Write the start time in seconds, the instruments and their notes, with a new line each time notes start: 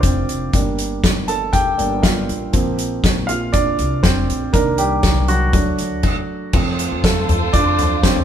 Already playing: grand piano F3 A#3 C4 D4 F4 D5 F5
0.01 upright bass F1, grand piano C4 C5, kick, closed hi-hat
0.29 upright bass F1, closed hi-hat
0.53 upright bass G1, grand piano G3 A#3 D4, kick, closed hi-hat
0.78 closed hi-hat
1.04 upright bass G1, kick, snare, closed hi-hat
1.28 grand piano A4 A5, closed hi-hat
1.53 grand piano G4 G5, kick, closed hi-hat
1.78 upright bass G1, grand piano G3 A#3 D4, closed hi-hat
2.03 grand piano F4 F5, kick, snare, closed hi-hat
2.29 upright bass A1, closed hi-hat
2.53 upright bass A#1, grand piano F3 A#3 C4, kick, closed hi-hat
2.78 closed hi-hat
3.04 upright bass A#1, kick, snare, closed hi-hat
3.27 grand piano F4 F5, closed hi-hat
3.53 grand piano D4 D5, kick, closed hi-hat
3.79 upright bass C2, closed hi-hat
4.03 upright bass F1, grand piano C4 C5, kick, snare, closed hi-hat
4.30 upright bass A#1, closed hi-hat
4.53 upright bass C2, grand piano D#3 A#3 D4 A#4, kick, closed hi-hat
4.78 grand piano G3 G4, closed hi-hat
5.03 upright bass C2, kick, snare, closed hi-hat
5.28 grand piano F#3 F#4, closed hi-hat
5.53 upright bass D2, grand piano F#3 A3 D4, kick, closed hi-hat
5.78 upright bass D2, closed hi-hat
6.03 kick, crash
6.53 upright bass F2, grand piano F3 A3 C4, string section F4 A4 C5, kick, crash
6.79 closed hi-hat
6.92 upright bass F2
7.04 grand piano A3 A4, kick, snare, closed hi-hat
7.29 upright bass F2, closed hi-hat, floor tom
7.53 upright bass F2, grand piano D4 D5, kick, closed hi-hat
7.78 closed hi-hat, floor tom
8.03 grand piano C4 C5, kick, snare, closed hi-hat
8.16 floor tom